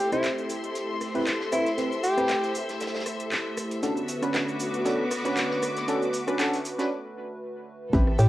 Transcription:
Already playing: analog synth pad A3 E4 G4 C5, string section C4 G4 A4 E5 C6
0.12 synth stab C4 E4 G4 C5, alto saxophone E4, cross-stick, closed hi-hat, cabasa
0.24 snare, clap, closed hi-hat, cabasa
0.38 cabasa
0.49 closed hi-hat, open hi-hat, cabasa
0.64 closed hi-hat, cabasa
0.75 closed hi-hat, cabasa
1.01 cross-stick, open hi-hat, cabasa
1.15 synth stab C4 E4 G4 B4, closed hi-hat, cabasa
1.27 snare, clap, closed hi-hat, cabasa
1.40 snare
1.52 synth stab C4 E4 G4 B4, alto saxophone E4, cross-stick, closed hi-hat, open hi-hat, cabasa
1.66 snare, closed hi-hat, cabasa
1.78 synth stab C4 E4 G4 B4, closed hi-hat, cabasa
1.92 cabasa
2.03 alto saxophone G4, closed hi-hat, open hi-hat, cabasa
2.17 synth stab C4 E4 G4 B4, cross-stick, closed hi-hat, cabasa
2.28 snare, clap, closed hi-hat, cabasa
2.43 snare, cabasa
2.55 closed hi-hat, open hi-hat, cabasa
2.69 snare, closed hi-hat, cabasa
2.80 snare, closed hi-hat, cabasa
2.87 snare, closed hi-hat
2.95 snare, closed hi-hat
3.00 snare, closed hi-hat
3.06 cross-stick, closed hi-hat, open hi-hat, cabasa
3.20 closed hi-hat, cabasa
3.32 snare, clap, closed hi-hat, cabasa
3.57 cross-stick, closed hi-hat, open hi-hat, cabasa
3.71 closed hi-hat, cabasa
3.83 analog synth pad D3 F#4 B4, string section B3, synth stab C#4 D4 F#4 A4, closed hi-hat, cabasa
3.97 string section F#4, cabasa
4.08 closed hi-hat, open hi-hat, cabasa
4.22 synth stab C#4 D4 F#4 B4, cross-stick, closed hi-hat, cabasa
4.34 snare, clap, closed hi-hat, cabasa
4.48 string section D6, cabasa
4.59 closed hi-hat, open hi-hat, cabasa
4.74 closed hi-hat, cabasa
4.85 synth stab C#4 D4 F#4 A4, closed hi-hat, cabasa
5.11 cross-stick, open hi-hat, cabasa
5.25 synth stab C#4 D4 F#4 B4, closed hi-hat, cabasa
5.36 snare, clap, closed hi-hat, cabasa
5.51 snare
5.62 cross-stick, closed hi-hat, open hi-hat, cabasa
5.77 snare, closed hi-hat, cabasa
5.88 synth stab C#4 D4 F#4 A4, closed hi-hat, cabasa
6.02 cabasa
6.13 closed hi-hat, open hi-hat, cabasa
6.27 synth stab C#4 D4 F#4 B4, cross-stick, closed hi-hat, cabasa
6.39 synth stab C#4 D4 F#4 A4, snare, clap, closed hi-hat, cabasa
6.53 snare, open hi-hat, cabasa
6.65 closed hi-hat, open hi-hat, cabasa
6.78 synth stab C#4 D4 F#4 B4, snare, closed hi-hat, cabasa
7.93 fm bass A1, synth stab C4 E4 G4 B4, string section A4, kick, closed hi-hat, cabasa
7.99 string section E5
8.07 cross-stick
8.19 fm bass A2, alto saxophone G4, closed hi-hat, open hi-hat, cabasa

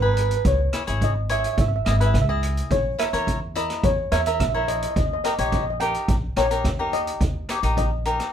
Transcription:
Already playing: upright bass G#1
0.02 cavaquinho D#4 G#4 B4, steel pan B4
0.14 steel pan B4, closed hi-hat
0.21 steel pan B4
0.29 steel pan B4, closed hi-hat
0.37 steel pan B4
0.45 upright bass C#2, steel pan C#5, kick, closed hi-hat
0.73 cavaquinho E4 G#4 C#5, cross-stick, closed hi-hat
0.87 upright bass G#1, cavaquinho E4 G#4 C#5, closed hi-hat
1.01 steel pan D#5, kick, closed hi-hat
1.29 cavaquinho E4 G#4 C#5, steel pan E5, closed hi-hat
1.39 steel pan E5
1.44 steel pan E5, closed hi-hat
1.53 steel pan E5
1.57 upright bass G#1, steel pan E5, kick, closed hi-hat
1.68 steel pan E5
1.76 steel pan E5
1.85 upright bass G#1, cavaquinho E4 G#4 D#5, steel pan E5, cross-stick, closed hi-hat
1.91 steel pan E5
1.99 cavaquinho E4 G#4 B4, steel pan E5, closed hi-hat
2.06 steel pan E5
2.14 upright bass C#2, steel pan E5, kick, cross-stick, closed hi-hat
2.22 steel pan E5
2.29 cavaquinho E4 G#4 D#5, steel pan E5
2.43 closed hi-hat
2.57 closed hi-hat
2.71 upright bass A#1, steel pan C#5, kick, closed hi-hat
2.99 cavaquinho E4 A#4 C#5, steel pan E5, cross-stick, closed hi-hat
3.13 upright bass E2, cavaquinho E4 A#4 C#5, closed hi-hat
3.27 kick, closed hi-hat
3.55 cavaquinho E4 A#4 D#5, steel pan D#5, closed hi-hat
3.70 cross-stick, closed hi-hat
3.83 upright bass E2, steel pan C#5, kick, closed hi-hat
4.12 upright bass E2, cavaquinho E4 A#4 C#5, steel pan E5, cross-stick, closed hi-hat
4.20 steel pan E5
4.26 cavaquinho E4 A#4 E5, steel pan E5, closed hi-hat
4.34 steel pan E5
4.40 upright bass A#1, steel pan E5, kick, cross-stick, closed hi-hat
4.50 steel pan E5
4.54 cavaquinho E4 A#4 C#5, steel pan E5
4.68 steel pan D#5, closed hi-hat
4.76 steel pan D#5
4.82 steel pan D#5, closed hi-hat
4.91 steel pan D#5
4.96 upright bass D#2, steel pan D#5, kick, closed hi-hat
5.06 steel pan D#5
5.13 steel pan D#5
5.24 cavaquinho D#4 G4 A#4, steel pan D#5, cross-stick, closed hi-hat
5.32 steel pan D#5
5.38 upright bass A#1, cavaquinho D#4 G4 C#5, steel pan D#5, closed hi-hat
5.47 steel pan D#5
5.52 steel pan D#5, kick, closed hi-hat
5.63 steel pan D#5
5.70 steel pan D#5
5.80 cavaquinho D#4 G4 A#4, steel pan G5, closed hi-hat
5.94 closed hi-hat
6.08 upright bass A#1, kick, closed hi-hat
6.36 upright bass A#1, cavaquinho D#4 G4 A#4, steel pan C#5, cross-stick, closed hi-hat
6.51 cavaquinho D#4 G4 A#4, closed hi-hat
6.64 upright bass D#2, kick, cross-stick, closed hi-hat
6.79 cavaquinho D#4 G4 A#4
6.93 steel pan D#5, closed hi-hat
7.07 closed hi-hat
7.20 upright bass D#2, kick, closed hi-hat
7.49 cavaquinho D#4 G4 C#5, cross-stick, closed hi-hat
7.63 upright bass A#1, cavaquinho D#4 G4 A#4, closed hi-hat
7.77 steel pan D#5, kick, closed hi-hat
8.05 cavaquinho D#4 G4 A#4, closed hi-hat
8.20 cross-stick, closed hi-hat

